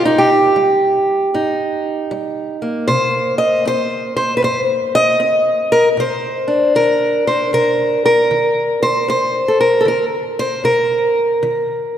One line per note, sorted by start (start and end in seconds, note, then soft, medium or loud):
0.00 0.50 C3 medium
0.05 0.29 D#4 medium
0.18 2.56 G4 medium
0.56 1.28 G3 medium
1.34 2.06 G2 medium
1.34 2.86 D#4 medium
2.11 2.83 G3 medium
2.62 5.99 A#3 soft
2.88 3.60 C3 medium
2.88 3.38 C5 loud
3.38 3.66 D#5 loud
3.65 4.38 C4 medium
3.65 4.15 C5 loud
4.17 4.36 C5 medium
4.37 4.43 B4 medium
4.42 5.15 G2 medium
4.42 4.60 C5 loud
4.95 5.99 D#5 loud
5.20 5.92 C4 medium
5.72 5.88 A#4 loud
5.97 6.70 C3 medium
5.97 6.75 C5 loud
6.48 9.48 D4 medium
6.75 7.48 D#3 medium
6.75 7.26 A#4 loud
7.27 7.54 C5 medium
7.53 8.25 C3 medium
7.53 8.04 A#4 loud
8.06 8.82 A#4 medium
8.31 9.03 D#3 medium
8.83 9.08 C5 loud
9.08 9.80 C3 medium
9.08 9.59 C5 medium
9.48 9.58 A4 medium
9.61 9.87 A#4 medium
9.81 9.86 A4 medium
9.85 10.58 D#3 medium
9.85 10.04 A#4 medium
10.39 10.64 C5 loud
10.64 11.36 C3 medium
10.64 11.98 A#4 loud
11.43 11.98 D#3 medium